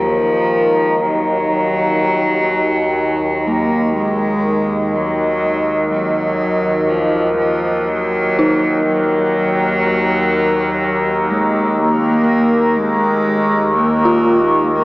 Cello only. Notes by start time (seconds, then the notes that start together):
0.02 F3
1.00 F#3
3.47 A#3
3.96 G#3
4.95 F#3
5.91 F#3
6.89 F3
7.37 F3
7.88 F#3
8.86 F#3
11.30 G#3
11.79 A#3
12.77 G#3
13.76 A#3
14.75 A#3